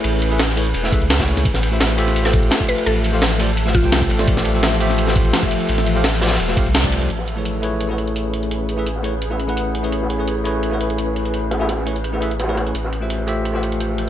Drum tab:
RD |x---x---x---x---x---x---x-x-x---|x---x---x---x-x-x---x---x---x---|x---x---x---x---x---x---x---x---|x---x---x---x-x-x---x---x---x---|
HH |x---x---x-x-o-x-x---x-x-x---x-x-|x---x---x-x-x-x-x---x-x-x---x-x-|x---x---x-x-o-x-x---x-x-x---x-x-|x---x---x-x-x-x-x---x-x-x---x-x-|
SD |--------o-o-------o-----o-o---o-|--o-----o-----o---o-----o-------|--------o-o-------o-----o-o---o-|--o-----o-----o---o-----o-------|
BD |--------------------o-----o-----|o-------------------o-----o-----|--------------------o-----o-----|o-------------------o-----o-----|

RD |x---x---x---xxxxx---x---x---x---|x---x---x---x-x-x---x---x---x---|x---x---x---x---x---x---x---x---|x---x---x---x-x-x---x---x---x---|
HH |x---x---x-x-o-x-x---x-x-x---x-x-|x---x---x---x---x---x-x-x---x-x-|x---x---x---x---x---x-x-x---x-x-|x---x---x---x---x---x-x-x---x-x-|
SD |--o-----o-o-oooo--o-----o-o-----|--o---------------o-------------|----------o-------o-------------|--o---------------o-------------|
BD |--------------------o-----o-----|--------------------------------|--------------------------------|--------------------------------|

RD |x---x-x-x---x---x-------xxxxx---|x---x---x---x-x-x---x---x---x---|
HH |x---x---x---x-x-x---x-x-x---x-x-|x---x---x---x---x---x-x-x---x---|
SD |----o-o-o-o-------o-----ooooo---|--o---------------o-------------|
BD |--------------------------------|--------------------------------|